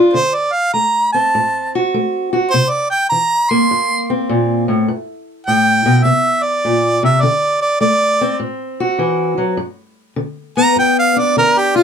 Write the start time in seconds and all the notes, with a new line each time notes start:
Already playing: D3 D4 F4
0.14 D3 C5
0.35 D5
0.53 F5
0.73 A3 A#5
1.13 C4 A5
1.35 A2
1.75 F#4
1.94 A3
2.33 F#4
2.50 C5
2.54 C3
2.70 D5
2.90 G5
3.09 E3 A#5
3.50 A#3 C6
3.71 G2
4.10 C4
4.29 A#2
4.68 A2
4.88 G2
5.47 A2 G5
5.86 B2
6.04 C3 E5
6.43 D5
6.65 A#2
7.03 C3 E5
7.21 D3 D5
7.62 D5
7.81 A3 D5
8.21 C4
8.40 A2
8.80 F#4
8.99 E3
9.38 F#3
9.57 G2
10.16 D3
10.57 B3 A#5
10.76 G2 G5
10.99 F5
11.16 D4 D5
11.37 D3 A#4
11.58 G4
11.76 F4